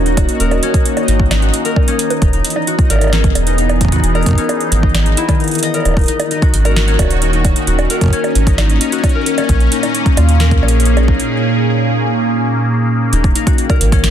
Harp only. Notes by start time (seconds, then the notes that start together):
Already playing: C#4 F#4 A#4 D#5
0.06 D#4
0.17 F#4
0.40 A#4
0.63 C#4
0.97 D#4
1.08 D#4
1.31 D#4
1.42 F#4
1.65 A#4
1.88 C#4
2.22 D#4
2.33 D#4
2.56 D#4
2.67 F#4
2.90 A#4
3.13 C#4
3.47 D#4
3.58 D#4
3.81 D#4
3.92 F#4
4.15 A#4
4.38 C#4
4.72 D#4
4.83 D#4
5.06 D#4
5.17 E4
5.29 D#3
5.40 D#4
5.63 D#5
5.74 A#4
5.97 D#4
6.08 D#4
6.31 D#4
6.42 F#4
6.65 A#4
6.88 C#4
7.22 D#4
7.33 D#4
7.56 D#4
7.67 F#4
7.90 A#4
8.13 C#4
8.47 D#4
8.58 D#4
8.81 D#4
8.92 F#4
9.15 A#4
9.38 C#4
9.72 D#4
9.83 D#4
10.06 D#4
10.17 F4
10.40 A#4
10.63 C#4
10.97 D#4
11.08 D#4
13.13 D#4
13.35 D#4
13.47 F#4
13.70 A#4
13.92 C#4